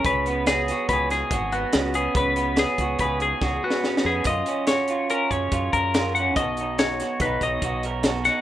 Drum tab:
HH |x--x--x--x--x--x--x--x--x--x--|x--x--x--x--x--x--------------|x--x--x--x--x--x--x--x--x--x--|x--x--x--x--x--x--x--x--x--x--|
SD |------o--o-----o--------o-----|------o-----------o---o-o-o---|------o-----------------o-----|------o--o--------------o--o--|
BD |o-----------o-----o-----------|o--------o--o-----o-----------|o--------------o--o--o--------|o-----------o--o--o-----------|